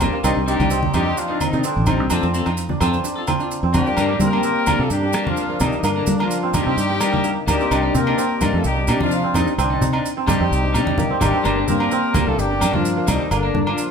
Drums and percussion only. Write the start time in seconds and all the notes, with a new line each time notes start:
0.01 high conga, low conga, low agogo, maracas
0.24 low agogo, maracas
0.48 maracas
0.60 high conga, low agogo, maracas
0.70 maracas
0.83 high conga
0.94 low conga, low agogo, maracas
1.18 maracas
1.41 high conga, low agogo, maracas
1.53 maracas
1.64 maracas
1.86 high conga, low conga, low agogo, maracas
2.10 low agogo, maracas
2.23 maracas
2.34 maracas
2.46 low agogo, maracas
2.57 maracas
2.69 high conga
2.81 low conga, low agogo, maracas
2.93 maracas
3.04 maracas
3.27 high conga, low agogo, maracas
3.40 maracas
3.51 maracas
3.74 high conga, low conga, low agogo, maracas
3.86 maracas
3.97 low agogo, maracas
4.20 high conga, maracas
4.33 low agogo
4.43 maracas
4.67 high conga, low agogo, maracas
4.90 maracas
5.13 low agogo, maracas
5.27 high conga
5.37 maracas
5.60 low conga, low agogo, maracas
5.72 maracas
5.84 low agogo, maracas
6.07 high conga, maracas
6.20 low agogo
6.31 maracas
6.54 high conga, low conga, low agogo, maracas
6.78 maracas
7.01 low agogo, maracas
7.14 high conga
7.24 maracas
7.48 low conga, low agogo, maracas
7.61 maracas
7.71 low agogo, maracas
7.95 high conga, maracas
8.07 low agogo
8.18 maracas
8.41 high conga, low conga, low agogo, maracas
8.64 maracas
8.88 low agogo, maracas
9.01 high conga
9.11 maracas
9.34 low conga, low agogo, maracas
9.47 maracas
9.59 low agogo, maracas
9.82 low conga, maracas
9.93 low agogo
10.06 maracas
10.27 high conga, low conga, low agogo, maracas
10.53 maracas
10.74 low agogo, maracas
10.87 high conga
10.98 high conga, low conga, maracas
11.21 low conga, low agogo, maracas
11.45 low agogo, maracas
11.68 high conga, maracas
11.80 low agogo
11.91 maracas
12.14 high conga, low conga, low agogo, maracas
12.39 maracas
12.61 low agogo, maracas
12.73 high conga
12.85 maracas
13.08 low conga, low agogo, maracas
13.31 low agogo, maracas
13.55 high conga
13.67 low agogo
13.78 maracas